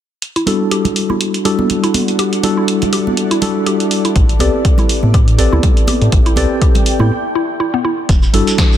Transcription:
0.22 ambient pad E4, closed hi-hat
0.36 synth arpeggio sound E4, closed hi-hat
0.45 tine electric piano G3 D4 E4 F#4 A4, ambient pad A4, open hi-hat, high conga
0.70 synth arpeggio sound G4, ambient pad F#5, closed hi-hat
0.76 ambient pad D5
0.85 closed hi-hat, low conga
0.96 open hi-hat
1.10 synth arpeggio sound E4, high conga
1.21 closed hi-hat
1.34 closed hi-hat
1.45 tine electric piano G3 D4 E4 F#4 A4, synth arpeggio sound G4, open hi-hat
1.59 high conga
1.70 closed hi-hat, low conga
1.84 synth arpeggio sound E4, closed hi-hat
1.94 open hi-hat, high conga
2.08 closed hi-hat
2.19 synth arpeggio sound G4, closed hi-hat
2.33 closed hi-hat
2.43 tine electric piano G3 D4 E4 F#4 A4, open hi-hat, high conga
2.57 synth arpeggio sound E4
2.68 closed hi-hat
2.82 closed hi-hat, low conga
2.93 synth arpeggio sound G4, open hi-hat
3.07 high conga
3.17 closed hi-hat
3.31 synth arpeggio sound E4, closed hi-hat
3.42 tine electric piano G3 D4 E4 F#4 A4, open hi-hat, low conga
3.66 synth arpeggio sound G4, closed hi-hat
3.80 closed hi-hat
3.91 open hi-hat
4.05 synth arpeggio sound E4, closed hi-hat
4.16 analog synth bass A1, kick, closed hi-hat
4.29 closed hi-hat
4.39 analog synth bass C2, tine electric piano C4 G4 A4 B4 D5, synth arpeggio sound G4, open hi-hat, high conga
4.65 kick, closed hi-hat
4.78 synth arpeggio sound E4, closed hi-hat, low conga
4.89 open hi-hat
5.03 analog synth bass A2, high conga
5.14 synth arpeggio sound G4, kick, closed hi-hat
5.28 closed hi-hat
5.38 analog synth bass A1, tine electric piano C4 G4 A4 B4 D5, open hi-hat
5.49 analog synth bass D2, synth arpeggio sound E4, ambient pad G5
5.53 high conga
5.63 kick, closed hi-hat, low conga
5.77 closed hi-hat
5.87 synth arpeggio sound G4, open hi-hat, high conga
6.02 analog synth bass A2, closed hi-hat
6.12 analog synth bass A1, kick, closed hi-hat
6.26 synth arpeggio sound E4, closed hi-hat
6.36 analog synth bass C2, tine electric piano C4 G4 A4 B4 D5, open hi-hat, high conga
6.62 synth arpeggio sound G4, kick, closed hi-hat
6.75 closed hi-hat, low conga
6.86 open hi-hat
6.99 analog synth bass A2, synth arpeggio sound E4, high conga
7.35 synth arpeggio sound E4
7.60 synth arpeggio sound E4
7.74 synth arpeggio sound B3
7.85 synth arpeggio sound E4
8.09 analog synth bass E1, kick, closed hi-hat, shekere
8.22 ambient pad F#5, shekere
8.33 analog synth bass G1, tine electric piano G3 D4 E4 F#4 A4, open hi-hat
8.47 closed hi-hat, shekere
8.58 kick, snare, closed hi-hat, shekere
8.72 shekere

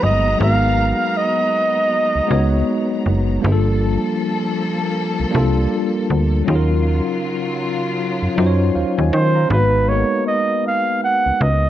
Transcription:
Already playing: string section F#3 B3 A#5, tine electric piano G#3 A#3 B3 D#4 F#4 G#4
0.03 fm bass G1, flugelhorn D#5
0.37 fm bass G#1, tine electric piano G#3 B3 D#4 F#4, flugelhorn F5
0.41 tine electric piano A#4
1.17 flugelhorn D#5
2.16 fm bass C#2
2.27 fm bass C#2, tine electric piano G#3 B3 D#4 F#4
2.31 tine electric piano C#5
3.06 fm bass F#1
3.41 fm bass G1, string section F3 A#3 A4, tine electric piano G3 A#3 D4 F4
3.46 tine electric piano G#4
3.52 tine electric piano A4
5.20 fm bass C2
5.31 fm bass C2, tine electric piano G3 A#3 D4 F4
5.35 tine electric piano A4
6.10 fm bass D2
6.45 fm bass D#2, string section C#3 F#3 F4, tine electric piano F#3 C#4 D#4 F4
6.49 tine electric piano G#4
6.55 tine electric piano A#4
8.22 fm bass F#2
8.35 fm bass F#2, tine electric piano F#3 C#4 D#4 F4
8.40 tine electric piano C5
8.46 tine electric piano C#5
8.75 fm bass D#2, tine electric piano C5 F5
8.97 fm bass D#2, tine electric piano D#5 G#5
9.13 fm bass D#3, flugelhorn C5
9.35 tine electric piano F5 A#5
9.49 fm bass G#1, tine electric piano G#3 B3 D#4 F#4, flugelhorn B4
9.53 tine electric piano B4
9.88 tine electric piano G#3 A#3 D#4 F#4, flugelhorn C#5
9.92 tine electric piano B3 A#4
10.27 flugelhorn D#5
10.67 flugelhorn F5
11.04 flugelhorn F#5
11.26 fm bass C#2
11.41 fm bass C#2, flugelhorn D#5

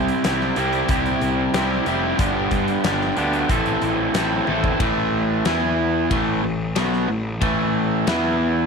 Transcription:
Already playing: picked electric bass C2, overdriven electric guitar C3 G3 C4 E4 G4
0.08 closed hi-hat
0.24 picked electric bass C2, overdriven electric guitar C3 G3 C4 E4 G4, snare, closed hi-hat
0.41 snare
0.56 picked electric bass C2, overdriven electric guitar C3 G3 C4 E4 G4, closed hi-hat
0.73 closed hi-hat
0.89 picked electric bass C2, overdriven electric guitar C3 G3 C4 E4 G4, kick, closed hi-hat
1.06 closed hi-hat
1.22 picked electric bass C2, closed hi-hat
1.54 picked electric bass C2, overdriven electric guitar C3 G3 C4 E4 G4, snare, closed hi-hat
1.86 picked electric bass F1, overdriven electric guitar C3 G3 C4 E4 G4, closed hi-hat
2.19 picked electric bass G1, overdriven electric guitar G2 D3 G3 B3 D4 G4, kick, closed hi-hat
2.51 picked electric bass G2, kick, closed hi-hat
2.68 closed hi-hat
2.84 picked electric bass G1, overdriven electric guitar G2 D3 G3 B3 D4 G4, snare, closed hi-hat
3.01 snare
3.16 picked electric bass D2, overdriven electric guitar G2 D3 G3 B3 D4 G4, closed hi-hat
3.33 closed hi-hat
3.49 picked electric bass A1, overdriven electric guitar A2 E3 C4 E4 A4, kick, closed hi-hat
3.66 closed hi-hat
3.82 picked electric bass A1, closed hi-hat
4.14 picked electric bass A1, overdriven electric guitar A2 E3 C4 E4 A4, snare, closed hi-hat
4.47 picked electric bass A1, overdriven electric guitar A2 E3 C4 E4 A4, high tom
4.64 kick
4.80 picked electric bass A1, overdriven electric guitar A2 E3 A3, kick, ride bell
5.45 picked electric bass E2, overdriven electric guitar E3 B3 E4, snare, ride bell
6.11 picked electric bass A1, overdriven electric guitar A2 E3 A3, kick, ride bell
6.43 picked electric bass A1, overdriven electric guitar A2 E3
6.76 picked electric bass B1, overdriven electric guitar B2 F#3 B3, snare, ride bell
6.93 snare
7.08 picked electric bass A1, overdriven electric guitar A2 E3
7.41 picked electric bass A1, overdriven electric guitar A2 E3 A3, kick, ride bell
8.07 picked electric bass E2, overdriven electric guitar E3 B3 E4, snare, ride bell

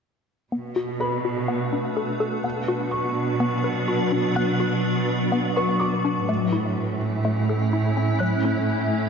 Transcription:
0.52 cello section B2, synth drone A3 D4 F#4 B4, synth arpeggio sound B3
0.76 synth arpeggio sound F#4
1.00 synth arpeggio sound A4, felt piano B4 B5
1.25 synth arpeggio sound F#4
1.48 synth arpeggio sound B3
1.73 synth arpeggio sound D4
1.97 synth arpeggio sound A4
2.20 synth arpeggio sound A4
2.44 cello section B2, synth drone F#3 D4 F#4 B4, synth arpeggio sound B3
2.68 synth arpeggio sound F#4
2.91 felt piano C#6
3.40 synth arpeggio sound B3
3.64 synth arpeggio sound B4
3.88 synth arpeggio sound F#4
4.12 synth arpeggio sound D4
4.35 synth arpeggio sound B3, felt piano F#6
4.60 synth arpeggio sound F#4
5.32 synth arpeggio sound B3
5.56 synth arpeggio sound B4, felt piano C#6
5.80 synth arpeggio sound F#4, felt piano D6
6.05 synth arpeggio sound D4
6.28 cello section A2, synth drone A3 C#4 E4 E5, synth arpeggio sound A3
6.53 synth arpeggio sound E4
7.25 synth arpeggio sound A3
7.49 synth arpeggio sound A4
7.73 synth arpeggio sound E4
7.97 synth arpeggio sound C#4
8.19 synth arpeggio sound F#3, synth drone A3 A4, felt piano F#6
8.45 synth arpeggio sound C#4

